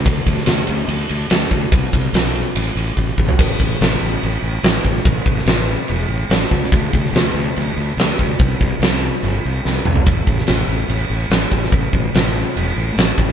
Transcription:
<<
  \new Staff \with { instrumentName = "Fingered electric bass" } { \clef bass \time 4/4 \key a \minor \tempo 4 = 144 d,8 d,8 d,8 d,8 d,8 d,8 d,8 d,8 | c,8 c,8 b,,4 a,,8 a,,8 a,,8 a,,8 | a,,8 a,,8 a,,8 a,,8 a,,8 a,,8 a,,8 a,,8 | a,,8 a,,8 a,,4 e,,8 a,,8 a,,8 cis,8 |
d,8 d,8 d,8 d,8 d,8 d,8 d,8 d,8 | c,8 c,8 c,4 g,,8 c,8 c,8 c,8 | a,,8 a,,8 a,,8 a,,8 a,,8 a,,8 a,,8 a,,8 | a,,8 a,,8 a,,4 e,,8 a,,8 a,,8 a,,8 | }
  \new DrumStaff \with { instrumentName = "Drums" } \drummode { \time 4/4 <bd cymr>8 <bd cymr>16 sn16 <cymr sn>8 cymr8 cymr8 cymr8 <cymr sn>8 <bd cymr>8 | <bd cymr>8 <bd cymr>8 <cymr sn>8 cymr8 cymr8 cymr8 bd8 bd16 tomfh16 | <cymc bd>8 bd8 <cymc sn>4 cymc4 <cymc sn>8 bd16 sn16 | <cymc bd>8 bd16 sn16 <cymc sn>4 cymc4 <cymc sn>8 bd16 sn16 |
<cymc bd>8 bd16 sn16 <cymc sn>4 cymc4 <cymc sn>8 bd8 | <cymc bd>8 bd8 <cymc sn>4 cymc4 sn8 toml16 tomfh16 | <cymc bd>8 bd16 sn16 <cymc sn>4 cymc4 <cymc sn>8 bd16 sn16 | <cymc bd>8 bd8 <cymc sn>4 cymc4 <cymc sn>8 bd8 | }
>>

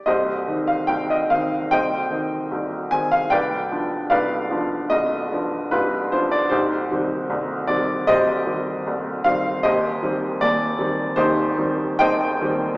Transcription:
<<
  \new Staff \with { instrumentName = "Upright piano" } { \time 4/4 \key c \minor \tempo 4 = 75 <g' c'' ees''>8. f''16 g''16 ees''16 f''8 <c'' ees'' g''>4. aes''16 f''16 | <b' d'' g''>4 <b' d'' f''>4 ees''4 <f' g' b'>8 c''16 d''16 | <ees' g' c''>4. d''8 <g' c'' ees''>4. f''8 | <g' c'' ees''>4 d''4 <ees' g' c''>4 <c'' ees'' g''>4 | }
  \new Staff \with { instrumentName = "Upright piano" } { \clef bass \time 4/4 \key c \minor <c,, c,>8 <ees c' ees'>8 <c,, c,>8 <ees c' ees'>8 <c,, c,>8 <ees c' ees'>8 <c,, c,>8 <ees c' ees'>8 | <c,, c,>8 <f b d'>8 <c,, c,>8 <f b d'>8 <c,, c,>8 <f b d'>8 <c,, c,>8 <f b d'>8 | <c,, c,>8 <ees g c'>8 <c,, c,>8 <ees g c'>8 <c,, c,>8 <ees g c'>8 <c,, c,>8 <ees g c'>8 | <ees,, ees,>8 <ees g c'>8 <ees,, ees,>8 <ees g c'>8 <ees,, ees,>8 <ees g c'>8 <ees,, ees,>8 <ees g c'>8 | }
>>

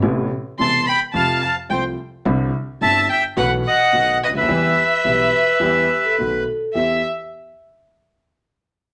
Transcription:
<<
  \new Staff \with { instrumentName = "Violin" } { \time 4/4 \key e \minor \tempo 4 = 107 r4 c'''8 b''8 a''8 a''8 g''8 r8 | r4 a''8 g''8 fis''8 fis''4 dis''16 e''16~ | e''2. r4 | e''8 r2. r8 | }
  \new Staff \with { instrumentName = "Bandoneon" } { \time 4/4 \key e \minor << { r4 c'''8 b''8 a''8 a''8 g''8 r8 | r4 a''8 g''8 fis''8 fis''4 dis''16 e''16~ | e''2. r4 | e''8 r2. r8 | } \\ { r4 a''8 g''8 f''8 f''8 c''8 r8 | r4 e''8 e''8 b'8 dis''4 b'16 b'16~ | b'2.~ b'8 r8 | r1 | } >> }
  \new Staff \with { instrumentName = "Vibraphone" } { \time 4/4 \key e \minor r1 | r1 | r4 b'8 b'4 g'16 a'4~ a'16 | r1 | }
  \new Staff \with { instrumentName = "Grand piano" } { \clef bass \time 4/4 \key e \minor <a,, a, c a b e'>8 r8 <e,, e, c a b e'>8 r8 <f, c f a f'>8 r8 <c, c f a f'>8 r8 | <c, c d g c' e'>8 r8 <g,, g, d g c' e'>8 r8 <b,, b, e a b fis'>8 r8 <b,, b, dis a b fis'>8 r32 cis,32 d,32 dis,32 | <e, e g b g'>8 r8 <b,, b, e g b g'>8 r8 <e, e g b g'>8 r8 <b,, b, dis a b fis'>8 r8 | <e, b e' g'>8 r2. r8 | }
  \new Staff \with { instrumentName = "Upright bass" } { \clef bass \time 4/4 \key e \minor a,,16. r8 r32 e,,16. r8 r32 f,16. r8 r32 c,16. r8 r32 | c,16. r8 r32 g,,16. r8 r32 b,,16. r8 r32 b,,16. r16 cis,32 d,32 dis,32 | e,16. r8 r32 b,,16. r8 r32 e,16. r8 r32 b,,16. r8 r32 | e,8 r2. r8 | }
>>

